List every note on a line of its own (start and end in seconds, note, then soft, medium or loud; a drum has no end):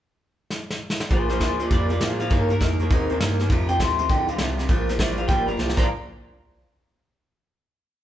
0.50 snare medium
0.70 snare medium
0.90 snare loud
1.00 snare loud
1.10 1.40 A#1 loud
1.10 1.30 A#2 medium
1.10 1.28 A#2 medium
1.10 1.29 F3 medium
1.10 1.28 F3 medium
1.10 1.30 A#3 medium
1.10 1.29 D4 medium
1.10 1.28 F4 medium
1.10 1.28 G#4 medium
1.10 1.29 C5 medium
1.10 kick loud
1.10 closed hi-hat medium
1.29 1.39 A#2 medium
1.29 1.40 F3 medium
1.29 1.40 A#3 soft
1.29 1.41 D4 medium
1.29 1.41 F4 medium
1.29 1.40 G#4 medium
1.29 1.41 C5 medium
1.29 snare soft
1.29 closed hi-hat medium
1.40 1.70 D2 medium
1.40 1.58 A#2 medium
1.40 1.59 F3 medium
1.40 1.58 F3 medium
1.40 1.60 A#3 medium
1.40 1.59 D4 medium
1.40 1.58 F4 medium
1.40 1.59 G#4 medium
1.40 1.62 C5 medium
1.40 kick medium
1.40 snare loud
1.40 closed hi-hat medium
1.59 1.70 A#2 medium
1.59 1.70 F3 medium
1.59 1.70 A#3 soft
1.59 1.71 D4 medium
1.59 1.71 F4 medium
1.59 1.70 F4 medium
1.59 1.71 D5 medium
1.59 closed hi-hat medium
1.71 2.00 F2 medium
1.71 1.89 A#2 medium
1.71 1.88 A#2 medium
1.71 1.90 F3 medium
1.71 1.88 G3 loud
1.71 1.90 A#3 medium
1.71 1.89 D4 medium
1.71 1.89 F4 medium
1.71 1.87 F4 loud
1.71 1.90 D5 medium
1.71 kick loud
1.71 snare soft
1.71 closed hi-hat medium
1.89 2.00 A#2 medium
1.89 2.00 G3 medium
1.89 2.00 A#3 soft
1.89 2.01 D4 soft
1.89 2.00 F4 soft
1.89 2.03 F4 medium
1.89 2.04 D5 medium
1.89 closed hi-hat medium
2.00 2.30 A2 medium
2.00 2.18 A#2 medium
2.00 2.19 F3 medium
2.00 2.18 F3 medium
2.00 2.20 A#3 medium
2.00 2.20 D4 medium
2.00 2.19 F4 medium
2.00 2.18 G#4 medium
2.00 2.19 F5 medium
2.00 snare loud
2.00 closed hi-hat medium
2.19 2.30 A#2 medium
2.19 2.30 F3 medium
2.19 2.29 A#3 soft
2.19 2.31 D4 soft
2.19 2.31 F4 medium
2.19 2.30 G#4 medium
2.19 2.31 F5 medium
2.19 closed hi-hat medium
2.30 2.60 G2 medium
2.30 2.49 D#3 medium
2.30 2.48 D#3 medium
2.30 2.49 A#3 medium
2.30 2.48 A#3 medium
2.30 2.49 D#4 medium
2.30 2.47 G4 medium
2.30 2.48 C#5 medium
2.30 2.50 F5 medium
2.30 kick loud
2.30 closed hi-hat medium
2.49 2.60 D#3 medium
2.49 2.60 A#3 soft
2.49 2.60 A#3 medium
2.49 2.60 D#4 medium
2.49 2.60 G4 medium
2.49 3.37 A#4 loud
2.49 closed hi-hat medium
2.60 2.89 F2 medium
2.60 2.79 D#3 medium
2.60 2.78 D#3 medium
2.60 2.79 A#3 medium
2.60 2.78 A#3 medium
2.60 2.79 D#4 medium
2.60 2.78 G4 medium
2.60 kick medium
2.60 snare loud
2.60 closed hi-hat medium
2.79 2.90 D#3 medium
2.79 2.90 A#3 medium
2.79 2.90 A#3 soft
2.79 2.91 D#4 medium
2.79 2.90 G4 medium
2.79 closed hi-hat medium
2.90 3.19 D#2 medium
2.90 3.09 D#3 medium
2.90 3.08 D#3 medium
2.90 3.10 A#3 medium
2.90 3.08 C4 loud
2.90 3.10 D#4 loud
2.90 3.08 G4 medium
2.90 kick loud
2.90 closed hi-hat medium
3.09 3.20 D#3 medium
3.09 3.20 A#3 soft
3.09 3.20 C4 medium
3.09 3.21 D#4 medium
3.09 3.20 G4 medium
3.09 closed hi-hat medium
3.20 3.49 G2 loud
3.20 3.39 D#3 medium
3.20 3.37 D#3 medium
3.20 3.39 A#3 medium
3.20 3.38 A#3 medium
3.20 3.39 D#4 medium
3.20 3.38 G4 medium
3.20 snare loud
3.20 closed hi-hat medium
3.39 3.50 D#3 medium
3.39 3.50 A#3 medium
3.39 3.52 A#3 soft
3.39 3.51 D#4 medium
3.39 3.50 G4 medium
3.39 snare soft
3.39 closed hi-hat medium
3.49 3.79 F2 medium
3.49 3.67 F2 medium
3.49 3.69 F2 medium
3.49 3.69 C3 loud
3.49 3.67 C3 medium
3.49 3.69 D#3 loud
3.49 3.70 A3 medium
3.49 3.69 D#4 medium
3.49 3.68 F4 loud
3.49 kick loud
3.49 closed hi-hat medium
3.68 3.78 F2 medium
3.68 3.79 C3 medium
3.68 3.79 D#3 soft
3.68 3.79 A3 medium
3.68 3.80 D#4 medium
3.68 3.80 F4 medium
3.68 3.79 G5 loud
3.68 closed hi-hat medium
3.79 4.08 D#2 loud
3.79 3.96 F2 medium
3.79 3.97 C3 medium
3.79 3.98 D#3 medium
3.79 3.99 A3 medium
3.79 3.98 D#4 medium
3.79 3.97 F4 medium
3.79 4.09 C6 loud
3.79 kick medium
3.79 snare loud
3.79 closed hi-hat medium
3.98 4.08 F2 medium
3.98 4.09 C3 medium
3.98 4.09 D#3 medium
3.98 4.09 A3 soft
3.98 4.09 D#4 medium
3.98 4.09 F4 medium
3.98 closed hi-hat medium
4.09 4.38 D2 medium
4.09 4.28 F2 medium
4.09 4.26 F2 medium
4.09 4.28 C3 medium
4.09 4.27 D3 loud
4.09 4.28 D#3 medium
4.09 4.28 A3 medium
4.09 4.27 D#4 medium
4.09 4.26 F4 medium
4.09 4.28 G5 medium
4.09 kick loud
4.09 snare soft
4.09 closed hi-hat medium
4.28 4.39 F2 medium
4.28 4.39 D3 medium
4.28 4.38 D#3 soft
4.28 4.39 A3 soft
4.28 4.39 D#4 medium
4.28 4.39 F4 medium
4.28 4.86 F5 loud
4.28 closed hi-hat medium
4.38 4.67 C2 medium
4.38 4.56 F2 medium
4.38 4.57 C3 medium
4.38 4.58 D#3 medium
4.38 4.58 A3 medium
4.38 4.57 D#4 medium
4.38 4.56 F4 medium
4.38 snare loud
4.38 closed hi-hat medium
4.57 4.68 F2 medium
4.57 4.68 C3 medium
4.57 4.68 D#3 soft
4.57 4.69 A3 medium
4.57 4.69 D#4 medium
4.57 4.69 F4 medium
4.57 snare soft
4.57 closed hi-hat medium
4.68 4.98 A#1 medium
4.68 4.87 A#2 medium
4.68 4.86 A#2 medium
4.68 4.87 F3 medium
4.68 4.86 F3 medium
4.68 4.88 A#3 medium
4.68 4.88 D4 loud
4.68 4.86 F4 loud
4.68 kick loud
4.68 closed hi-hat medium
4.88 4.98 A#2 medium
4.88 4.99 F3 medium
4.88 4.98 A#3 medium
4.88 4.99 D4 medium
4.88 4.99 F4 medium
4.88 snare soft
4.88 closed hi-hat medium
4.98 5.28 A1 medium
4.98 5.16 A#2 medium
4.98 5.17 F3 medium
4.98 5.16 F3 medium
4.98 5.17 A#3 medium
4.98 5.17 D4 medium
4.98 5.15 F4 medium
4.98 5.17 D5 medium
4.98 kick medium
4.98 snare loud
4.98 closed hi-hat medium
5.16 5.28 A#2 medium
5.16 5.28 F3 medium
5.16 5.27 A#3 soft
5.16 5.28 D4 medium
5.16 5.28 F4 medium
5.16 5.28 F5 medium
5.16 closed hi-hat medium
5.28 5.57 G1 medium
5.28 5.47 A#2 medium
5.28 5.46 A#2 medium
5.28 5.47 F3 medium
5.28 5.46 G3 loud
5.28 5.47 A#3 medium
5.28 5.46 D4 medium
5.28 5.45 F4 medium
5.28 5.47 G5 medium
5.28 kick loud
5.28 snare soft
5.28 closed hi-hat medium
5.46 5.58 A#2 medium
5.46 5.58 G3 medium
5.46 5.57 A#3 soft
5.46 5.58 D4 soft
5.46 5.57 F4 medium
5.46 5.76 A#5 medium
5.46 closed hi-hat medium
5.57 5.76 C2 medium
5.57 5.75 A#2 medium
5.57 5.76 F3 medium
5.57 5.77 A#3 medium
5.57 5.77 D4 medium
5.57 5.77 F4 medium
5.57 snare medium
5.69 snare medium
5.76 5.87 A#1 loud
5.76 5.85 A#2 medium
5.76 5.86 A#2 loud
5.76 5.86 F3 medium
5.76 5.86 F3 loud
5.76 5.86 A#3 loud
5.76 5.86 A#3 medium
5.76 5.86 D4 loud
5.76 5.86 D4 medium
5.76 5.86 F4 loud
5.76 5.86 F4 medium
5.76 5.87 A#5 medium
5.76 kick loud
5.76 crash medium